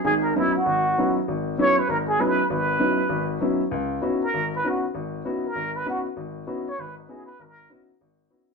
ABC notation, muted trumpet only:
X:1
M:4/4
L:1/8
Q:"Swing" 1/4=196
K:Dbdor
V:1 name="Muted trumpet"
A B F G4 z | z2 d c B A c2 | c6 z2 | z3 B2 c G z |
z3 B2 c G z | z3 d c E A c | B2 z6 |]